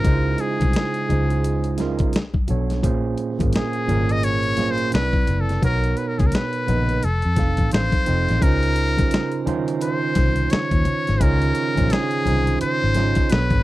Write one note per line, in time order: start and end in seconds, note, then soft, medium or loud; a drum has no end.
0.00 0.88 C#3 medium
0.00 0.05 G#3 medium
0.00 2.15 C#4 medium
0.00 0.05 D#4 medium
0.00 0.13 F4 medium
0.00 0.42 A#4 medium
0.00 0.07 C5 medium
0.05 0.35 C#2 medium
0.05 0.88 G#3 medium
0.05 0.89 D#4 medium
0.05 0.13 E4 medium
0.05 0.89 C5 loud
0.05 kick loud
0.05 closed hi-hat medium
0.05 muted conga soft
0.05 low conga medium
0.13 0.92 F4 medium
0.38 1.80 G#4 medium
0.38 closed hi-hat medium
0.38 muted conga soft
0.60 0.74 C2 medium
0.60 kick medium
0.60 closed hi-hat soft
0.60 high conga medium
0.73 snare loud
0.73 closed hi-hat medium
0.94 closed hi-hat soft
1.08 2.15 C#2 medium
1.08 1.66 C#3 medium
1.08 1.67 G#3 medium
1.08 1.67 D#4 medium
1.08 1.67 F4 medium
1.08 1.68 C5 medium
1.08 closed hi-hat medium
1.08 high conga medium
1.08 low conga medium
1.30 closed hi-hat soft
1.44 closed hi-hat medium
1.64 closed hi-hat soft
1.78 2.13 C#3 medium
1.78 2.14 G#3 medium
1.78 2.14 D#4 medium
1.78 2.14 F4 medium
1.78 2.15 A#4 medium
1.78 snare soft
1.78 closed hi-hat medium
1.78 muted conga soft
1.78 high conga soft
1.99 kick medium
1.99 closed hi-hat soft
2.13 2.44 B1 medium
2.13 snare loud
2.13 closed hi-hat medium
2.13 muted conga soft
2.34 kick medium
2.34 high conga medium
2.47 2.84 B1 medium
2.47 2.77 B2 medium
2.47 2.77 B3 medium
2.47 2.78 D4 medium
2.47 2.78 A4 medium
2.47 2.78 C#5 medium
2.47 closed hi-hat medium
2.47 muted conga soft
2.47 low conga medium
2.70 snare soft
2.70 closed hi-hat soft
2.82 3.14 A#1 medium
2.82 3.25 A#2 loud
2.82 3.25 A#3 medium
2.82 3.25 C#4 loud
2.82 3.26 G#4 medium
2.82 3.26 C5 loud
2.82 kick medium
2.82 closed hi-hat medium
2.82 muted conga soft
2.82 low conga medium
3.18 closed hi-hat medium
3.18 muted conga soft
3.38 3.53 G#1 medium
3.38 3.78 A#2 medium
3.38 3.79 A#3 medium
3.38 3.79 C#4 medium
3.38 3.79 G#4 medium
3.38 3.80 A#4 medium
3.38 kick medium
3.38 closed hi-hat soft
3.38 high conga medium
3.52 4.13 G#4 medium
3.52 snare medium
3.52 closed hi-hat medium
3.52 muted conga soft
3.73 closed hi-hat soft
3.87 4.89 G#1 medium
3.87 4.45 A#2 medium
3.87 4.45 A#3 medium
3.87 4.46 C#4 medium
3.87 4.46 G#4 medium
3.87 4.47 A#4 medium
3.87 closed hi-hat medium
3.87 muted conga soft
3.87 high conga medium
3.87 low conga medium
4.09 4.26 D#5 medium
4.09 closed hi-hat soft
4.23 4.73 C#5 loud
4.23 closed hi-hat medium
4.43 closed hi-hat soft
4.56 4.92 A#2 medium
4.56 4.92 A#3 medium
4.56 4.93 C#4 medium
4.56 4.93 G#4 medium
4.56 4.94 C5 medium
4.56 snare soft
4.56 closed hi-hat medium
4.56 muted conga soft
4.56 high conga soft
4.71 4.94 C5 medium
4.78 closed hi-hat soft
4.92 5.23 C2 medium
4.92 5.51 C3 medium
4.92 5.51 C4 medium
4.92 5.01 D#4 soft
4.92 5.52 B4 medium
4.92 5.43 B4 medium
4.92 5.53 D5 medium
4.92 snare medium
4.92 closed hi-hat medium
5.00 5.55 E4 medium
5.13 kick medium
5.13 high conga medium
5.27 5.58 F#1 medium
5.27 closed hi-hat medium
5.27 low conga medium
5.41 5.63 A4 medium
5.49 snare soft
5.49 closed hi-hat soft
5.61 5.93 B1 medium
5.61 6.46 B2 medium
5.61 6.46 B3 medium
5.61 6.46 D#4 medium
5.61 6.47 A#4 medium
5.61 5.99 A#4 medium
5.61 6.47 C#5 medium
5.61 kick loud
5.61 closed hi-hat medium
5.61 low conga medium
5.84 closed hi-hat soft
5.97 6.09 B4 medium
5.97 closed hi-hat soft
6.08 6.21 A#4 medium
6.19 6.32 C#2 medium
6.19 6.28 G#4 medium
6.19 kick medium
6.19 closed hi-hat soft
6.19 high conga medium
6.27 6.36 A#4 medium
6.32 7.06 B4 medium
6.32 snare loud
6.32 closed hi-hat medium
6.32 muted conga soft
6.53 closed hi-hat soft
6.67 6.98 A#1 medium
6.67 7.02 C#3 medium
6.67 7.02 B3 medium
6.67 7.03 D#4 medium
6.67 7.03 B4 medium
6.67 7.03 D#5 medium
6.67 closed hi-hat medium
6.67 muted conga soft
6.67 high conga medium
6.67 low conga medium
6.89 closed hi-hat soft
7.02 7.21 F1 medium
7.02 7.73 A4 medium
7.02 closed hi-hat medium
7.02 muted conga soft
7.22 7.36 F2 medium
7.22 closed hi-hat soft
7.36 7.56 F1 medium
7.36 7.94 F3 medium
7.36 7.94 C4 medium
7.36 7.95 D#4 medium
7.36 7.95 A4 medium
7.36 7.95 F5 medium
7.36 kick medium
7.36 snare soft
7.36 closed hi-hat medium
7.36 muted conga soft
7.36 high conga soft
7.57 7.71 A1 medium
7.57 kick medium
7.57 closed hi-hat soft
7.71 7.91 A1 medium
7.71 8.44 C5 loud
7.71 snare loud
7.71 closed hi-hat medium
7.71 muted conga soft
7.92 kick medium
7.92 closed hi-hat soft
7.92 high conga medium
8.06 8.26 F1 medium
8.06 8.35 F3 medium
8.06 8.36 C4 medium
8.06 8.36 D#4 medium
8.06 8.36 A4 medium
8.06 8.37 D#5 medium
8.06 closed hi-hat medium
8.06 muted conga soft
8.06 low conga medium
8.29 8.41 A1 medium
8.29 snare soft
8.29 closed hi-hat soft
8.41 9.02 C#2 loud
8.41 8.83 C#3 medium
8.41 8.83 C#4 medium
8.41 8.84 D#4 medium
8.41 8.84 F4 medium
8.41 9.47 A#4 loud
8.41 8.84 C5 loud
8.41 kick loud
8.41 closed hi-hat medium
8.41 low conga medium
8.63 closed hi-hat soft
8.76 closed hi-hat medium
8.97 9.37 C#3 medium
8.97 9.37 C#4 medium
8.97 9.38 D#4 medium
8.97 9.38 F4 medium
8.97 9.38 C5 medium
8.97 kick medium
8.97 closed hi-hat soft
8.97 high conga medium
9.11 snare loud
9.11 closed hi-hat medium
9.32 closed hi-hat soft
9.45 10.55 D#3 medium
9.45 10.55 C#4 medium
9.45 10.55 D#4 medium
9.45 10.56 F4 medium
9.45 10.56 C5 loud
9.45 closed hi-hat medium
9.45 muted conga soft
9.45 high conga medium
9.45 low conga medium
9.68 closed hi-hat soft
9.81 10.53 C5 medium
9.81 closed hi-hat medium
10.15 10.46 C2 medium
10.15 kick medium
10.15 snare soft
10.15 closed hi-hat medium
10.15 muted conga soft
10.15 high conga soft
10.36 closed hi-hat soft
10.50 11.24 C#5 medium
10.50 muted fingered electric bass stroke soft
10.50 snare loud
10.50 closed hi-hat medium
10.50 muted conga soft
10.71 10.84 D#2 medium
10.71 kick medium
10.71 closed hi-hat soft
10.71 high conga medium
10.85 closed hi-hat medium
10.85 muted conga soft
10.85 low conga medium
11.07 11.20 G#1 medium
11.07 snare soft
11.07 closed hi-hat soft
11.20 11.51 C#2 loud
11.20 11.62 C#3 medium
11.20 11.62 C#4 medium
11.20 11.63 D#4 medium
11.20 11.63 F4 medium
11.20 11.93 A#4 medium
11.20 11.64 C#5 loud
11.20 kick loud
11.20 closed hi-hat medium
11.20 muted conga soft
11.20 low conga medium
11.42 closed hi-hat soft
11.55 closed hi-hat medium
11.76 11.90 A#1 medium
11.76 12.16 C#3 medium
11.76 12.16 C#4 medium
11.76 12.16 D#4 medium
11.76 12.17 F4 medium
11.76 12.17 C5 medium
11.76 kick medium
11.76 closed hi-hat soft
11.76 high conga medium
11.90 12.61 G#4 medium
11.90 snare loud
11.90 closed hi-hat medium
11.90 muted conga soft
12.11 closed hi-hat soft
12.24 12.56 C2 medium
12.24 12.82 D#3 medium
12.24 12.83 C#4 medium
12.24 12.83 D#4 medium
12.24 12.84 F4 medium
12.24 12.84 C5 medium
12.24 closed hi-hat medium
12.24 muted conga soft
12.24 high conga medium
12.24 low conga medium
12.47 closed hi-hat soft
12.59 13.33 C5 loud
12.59 muted fingered electric bass stroke soft
12.59 closed hi-hat medium
12.59 muted conga soft
12.84 13.12 G#1 medium
12.94 13.30 C#3 medium
12.94 13.30 C#4 medium
12.94 13.31 D#4 medium
12.94 13.31 F4 medium
12.94 13.31 D#5 medium
12.94 snare soft
12.94 closed hi-hat medium
12.94 muted conga soft
12.94 high conga medium
13.15 kick medium
13.15 closed hi-hat soft
13.29 13.50 B1 loud
13.29 13.63 B2 medium
13.29 13.63 B3 medium
13.29 13.63 D4 medium
13.29 13.63 A4 medium
13.29 13.63 B4 medium
13.29 13.63 C#5 medium
13.29 snare loud
13.29 closed hi-hat medium
13.29 muted conga soft
13.50 13.63 G#1 loud
13.50 kick medium
13.50 closed hi-hat soft
13.50 high conga medium